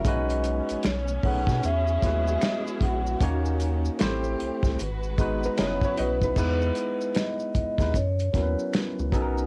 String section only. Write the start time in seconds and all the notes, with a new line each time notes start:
0.06 G#3 B3 C#4
0.84 A3
1.63 E4 F#4 G#4
3.21 D#3 C#4
4.00 A3 C4 G4
4.79 G#3 F#4 B4
5.57 F#3 E4 B4